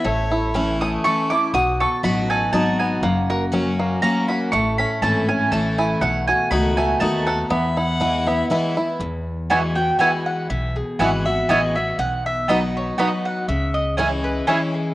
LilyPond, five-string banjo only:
\new Staff \with { instrumentName = "Five-string banjo" } { \time 3/4 \key e \major \tempo 4 = 121 a8 e'8 cis'8 a8 a'8 e'8 | fis'8 a'8 fis'8 a'8 dis'8 b8 | ais8 fis'8 cis'8 ais8 cis'8 fis'8 | a8 cis'8 e'8 cis'8 a8 e'8 |
a8 fis'8 dis'8 a8 dis'8 a'8 | b8 e'8 e'8 b8 e'8 e'8 | r4 <b e'>8 r8 <b e'>8 r8 | r4 <b e'>8 r8 <b e'>8 r8 |
r4 <b dis' fis'>8 r8 <b dis' fis'>8 r8 | r4 <cis' e'>8 r8 <cis' e'>8 r8 | }